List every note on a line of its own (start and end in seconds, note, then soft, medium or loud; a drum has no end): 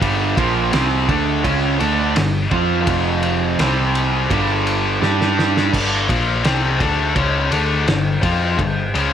0.00 0.35 G1 loud
0.00 0.36 G2 loud
0.00 0.36 D3 medium
0.00 0.36 G3 loud
0.00 kick medium
0.00 ride medium
0.36 0.71 A#1 medium
0.36 0.72 A#2 loud
0.36 0.72 F3 medium
0.36 0.72 A#3 medium
0.36 kick loud
0.36 ride medium
0.72 1.07 C2 medium
0.72 1.07 C3 medium
0.72 1.08 G3 medium
0.72 1.08 C4 loud
0.72 snare loud
0.72 ride medium
1.08 1.42 D2 medium
1.08 1.43 D3 medium
1.08 1.44 A3 medium
1.08 1.44 D4 medium
1.08 kick medium
1.08 ride medium
1.44 1.78 C#2 loud
1.44 1.79 C#3 loud
1.44 1.79 G#3 loud
1.44 1.80 C#4 loud
1.44 kick loud
1.44 ride medium
1.79 2.14 D2 loud
1.79 2.15 D3 medium
1.79 2.15 A3 medium
1.79 2.15 D4 loud
1.79 ride medium
2.16 2.49 G1 medium
2.16 2.45 G2 medium
2.16 2.45 D3 medium
2.16 snare loud
2.16 ride medium
2.51 2.85 F2 loud
2.51 2.88 F3 medium
2.51 2.88 C4 medium
2.51 2.87 F4 loud
2.51 kick loud
2.51 ride medium
2.87 3.55 F1 medium
2.87 3.58 F2 medium
2.87 3.58 C3 medium
2.87 3.58 F3 medium
2.87 kick medium
2.87 ride medium
3.23 ride medium
3.59 4.26 C2 medium
3.59 4.30 C3 medium
3.59 4.30 G3 medium
3.59 4.30 C4 loud
3.59 snare loud
3.59 ride medium
3.95 ride medium
4.30 4.98 G1 medium
4.30 5.00 G2 medium
4.30 5.01 D3 loud
4.30 5.00 G3 loud
4.30 kick loud
4.30 ride medium
4.67 ride medium
5.01 5.69 G2 medium
5.01 5.72 G3 medium
5.01 5.72 D4 loud
5.01 5.73 G4 loud
5.01 snare medium
5.21 snare medium
5.39 snare medium
5.57 snare medium
5.72 6.07 G1 medium
5.72 6.07 G2 loud
5.72 6.08 D3 medium
5.72 6.08 G3 medium
5.72 kick medium
5.72 crash loud
6.09 6.43 A#1 loud
6.09 6.44 A#2 medium
6.09 6.44 F3 medium
6.09 6.44 A#3 loud
6.09 kick loud
6.09 ride medium
6.44 6.78 C2 medium
6.44 6.79 C3 loud
6.44 6.80 G3 medium
6.44 6.80 C4 loud
6.44 snare loud
6.44 ride loud
6.80 7.13 D2 medium
6.80 7.14 D3 medium
6.80 7.15 A3 loud
6.80 7.15 D4 loud
6.80 kick loud
6.80 ride medium
7.15 7.49 C#2 loud
7.15 7.50 C#3 medium
7.15 7.50 G#3 loud
7.15 7.51 C#4 loud
7.15 kick loud
7.15 ride loud
7.51 7.85 D2 medium
7.51 7.86 D3 loud
7.51 7.86 A3 medium
7.51 7.86 D4 loud
7.51 ride medium
7.87 8.21 G1 medium
7.87 8.16 G2 medium
7.87 8.16 D3 medium
7.87 snare loud
7.87 ride medium
8.22 8.56 F2 loud
8.22 8.57 F3 medium
8.22 8.57 C4 medium
8.22 8.58 F4 loud
8.22 kick loud
8.22 ride medium
8.58 8.92 G1 medium
8.58 8.87 G2 medium
8.58 8.87 D3 medium
8.58 kick medium
8.58 ride medium
8.94 9.13 C#2 medium
8.94 9.13 C#3 medium
8.94 9.13 G#3 loud
8.94 9.13 C#4 loud
8.94 ride medium